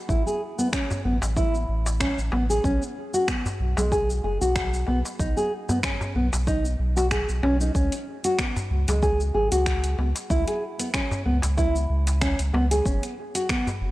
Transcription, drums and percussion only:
0.09 kick, shaker
0.27 shaker
0.59 shaker
0.73 finger snap, kick, shaker
0.91 darbuka ka, darbuka dum, shaker
1.22 darbuka ka, darbuka tek, shaker
1.37 kick, shaker
1.55 shaker
1.86 darbuka ka, darbuka tek, shaker
2.00 finger snap, kick, shaker
2.19 shaker
2.32 darbuka ka, darbuka tek
2.50 shaker
2.64 kick, shaker
2.82 shaker
3.14 shaker
3.28 finger snap, kick, shaker
3.46 darbuka ka, darbuka dum, shaker
3.77 darbuka ka, darbuka tek, shaker
3.92 kick, shaker
4.10 shaker
4.42 shaker
4.56 finger snap, kick, shaker
4.74 shaker
4.87 darbuka ka
5.05 darbuka ka, shaker
5.19 kick, shaker
5.37 shaker
5.69 darbuka dum, shaker
5.83 finger snap, kick, shaker
6.01 darbuka ka, darbuka dum, shaker
6.33 darbuka ka, darbuka tek, shaker
6.47 kick, shaker
6.65 shaker
6.97 darbuka ka, darbuka tek, shaker
7.11 finger snap, kick, shaker
7.29 shaker
7.43 darbuka ka, darbuka tek
7.61 shaker
7.75 kick, shaker
7.92 closed hi-hat, shaker
8.24 closed hi-hat, shaker
8.39 finger snap, kick, shaker
8.56 darbuka ka, darbuka dum, shaker
8.88 closed hi-hat, darbuka ka, darbuka tek, shaker
9.03 kick, shaker
9.20 shaker
9.52 closed hi-hat, shaker
9.66 finger snap, kick, shaker
9.84 closed hi-hat, shaker
9.99 darbuka ka
10.15 closed hi-hat, darbuka ka, shaker
10.30 kick, shaker
10.48 closed hi-hat, shaker
10.80 closed hi-hat, shaker
10.94 finger snap, kick, shaker
11.11 darbuka ka, darbuka dum, shaker
11.42 closed hi-hat, darbuka ka, darbuka tek, shaker
11.58 kick, shaker
11.76 shaker
12.07 closed hi-hat, darbuka ka, darbuka tek, shaker
12.21 finger snap, kick, shaker
12.39 closed hi-hat, shaker
12.54 darbuka ka, darbuka tek
12.71 closed hi-hat, shaker
12.86 kick, shaker
13.03 closed hi-hat, shaker
13.35 closed hi-hat, shaker
13.49 finger snap, kick, shaker
13.67 darbuka ka, darbuka dum, shaker

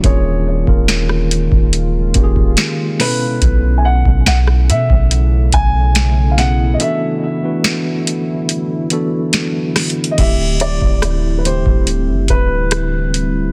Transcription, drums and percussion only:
0.04 kick, closed hi-hat
0.67 kick
0.88 snare, closed hi-hat
1.09 cross-stick
1.31 closed hi-hat
1.52 kick
1.73 closed hi-hat
2.14 kick, closed hi-hat
2.36 kick
2.57 snare, closed hi-hat
3.00 snare, open hi-hat
3.42 kick, closed hi-hat
4.05 kick
4.26 snare, closed hi-hat
4.47 cross-stick
4.70 closed hi-hat
4.90 kick
5.11 closed hi-hat
5.52 kick, closed hi-hat
5.95 snare, closed hi-hat
6.38 snare, closed hi-hat
6.80 closed hi-hat
7.64 snare, closed hi-hat
8.07 closed hi-hat
8.49 closed hi-hat
8.90 closed hi-hat
9.33 snare, closed hi-hat
9.76 cross-stick, snare, closed hi-hat, open hi-hat
9.90 closed hi-hat
10.04 closed hi-hat
10.18 kick, closed hi-hat, crash
10.60 closed hi-hat
10.82 kick
11.02 cross-stick, closed hi-hat
11.45 closed hi-hat
11.66 kick
11.87 closed hi-hat
12.28 kick, closed hi-hat
12.71 cross-stick, closed hi-hat
13.14 closed hi-hat

